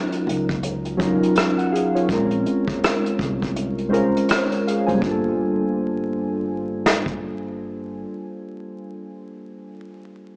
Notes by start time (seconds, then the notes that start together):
Already playing: F#3 C#4 D#4 F4 A#4
0.12 closed hi-hat
0.27 C#2, closed hi-hat
0.49 kick, closed hi-hat
0.63 closed hi-hat
0.85 closed hi-hat
0.97 F#3 C#4 D#4 F4, kick, closed hi-hat
1.01 A#4
1.23 closed hi-hat
1.36 cross-stick, closed hi-hat
1.58 A#4 F#5, closed hi-hat
1.72 G#4 F5, closed hi-hat
1.95 F4 C#5, closed hi-hat
2.08 A#1 G#3 C4 C#4 F4, kick, closed hi-hat
2.12 A#4
2.31 closed hi-hat
2.46 closed hi-hat
2.68 kick, closed hi-hat
2.84 cross-stick, closed hi-hat
3.06 closed hi-hat
3.19 C2, kick, closed hi-hat
3.42 kick, closed hi-hat
3.56 closed hi-hat
3.78 closed hi-hat
3.88 G#3 C#4 F4 C5
3.93 A#4, closed hi-hat
4.17 closed hi-hat
4.29 F4 C#5, cross-stick, closed hi-hat
4.52 closed hi-hat
4.67 G#4 F5, closed hi-hat
4.86 F#1 C5 G#5, closed hi-hat
4.94 G3
4.98 A#3
5.02 G1 D4, kick
5.06 F4
5.10 A4
6.86 snare
7.06 kick